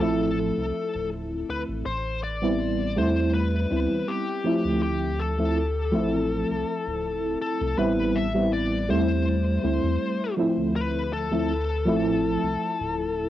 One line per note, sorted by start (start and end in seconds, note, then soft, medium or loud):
0.00 0.52 A1 medium
0.00 1.83 F3 medium
0.00 1.84 A3 medium
0.00 1.84 C4 medium
0.00 1.85 E4 loud
0.00 1.08 A4 medium
0.57 0.72 C2 medium
0.95 1.44 D1 medium
1.49 1.65 D2 medium
1.49 1.60 B4 loud
1.69 1.83 A1 medium
1.86 2.99 A1 medium
1.86 2.20 C5 loud
2.24 3.00 D5 loud
2.42 2.93 G3 medium
2.42 2.93 B3 medium
2.42 2.93 C4 medium
2.42 2.93 E4 medium
2.96 3.66 E2 medium
2.96 3.67 G3 medium
2.96 3.67 A3 medium
2.96 3.67 C4 medium
2.96 3.67 E4 loud
2.96 3.34 C5 loud
3.34 4.11 B4 loud
3.70 3.87 D2 medium
3.70 4.41 G3 medium
3.70 4.41 B3 medium
3.70 4.41 C4 medium
3.70 4.41 E4 medium
3.91 4.05 E2 loud
4.08 4.81 G4 medium
4.44 5.34 F3 medium
4.44 5.34 A3 medium
4.44 5.35 C4 medium
4.44 5.35 E4 loud
4.65 5.94 D2 loud
4.82 5.21 G4 medium
5.19 7.38 A4 medium
5.38 5.58 F3 medium
5.38 5.58 A3 medium
5.38 5.59 C4 medium
5.38 5.59 E4 medium
5.91 6.44 A1 medium
5.91 7.76 F3 loud
5.91 7.76 A3 medium
5.91 7.77 C4 medium
5.91 7.77 E4 loud
6.50 6.64 C2 medium
6.87 7.36 D1 medium
7.42 7.78 A4 medium
7.61 7.75 C2 medium
7.78 8.91 A1 loud
7.78 8.27 G3 medium
7.78 8.27 B3 medium
7.78 8.28 C4 medium
7.78 8.28 E4 loud
7.78 8.17 B4 loud
8.16 8.53 E5 loud
8.34 8.85 G3 medium
8.34 8.85 B3 medium
8.34 8.86 C4 medium
8.34 8.86 E4 medium
8.53 8.87 D5 loud
8.88 9.59 E2 medium
8.88 9.59 G3 loud
8.88 9.59 A3 medium
8.88 9.60 C4 medium
8.88 9.60 E4 loud
8.88 10.34 C5 medium
9.63 9.80 D2 loud
9.63 10.33 G3 medium
9.63 10.34 A3 medium
9.63 10.34 C4 medium
9.63 10.34 E4 medium
9.83 9.98 E2 loud
10.37 11.26 F3 medium
10.37 11.27 A3 medium
10.37 11.27 C4 medium
10.37 11.28 E4 loud
10.57 11.88 D2 loud
10.76 11.13 B4 loud
11.13 13.29 A4 medium
11.31 11.51 F3 medium
11.31 11.51 A3 medium
11.31 11.51 C4 medium
11.31 11.52 E4 medium
11.85 12.37 A1 medium
11.85 13.29 F3 medium
11.85 13.29 A3 medium
11.85 13.29 C4 medium
11.85 13.29 E4 loud
12.43 12.57 C2 medium
12.80 13.29 D1 medium